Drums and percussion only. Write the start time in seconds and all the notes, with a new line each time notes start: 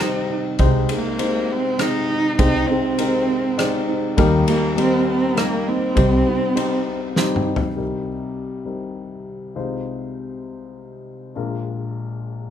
0.00 cross-stick
0.59 kick, ride
0.89 ride
1.19 ride
1.79 cross-stick, ride
2.39 kick, ride
2.99 ride
3.59 cross-stick, ride
4.18 kick, ride
4.48 ride
4.78 ride
5.37 cross-stick, ride
5.97 kick, ride
6.57 ride
7.16 snare
7.36 mid tom
7.56 floor tom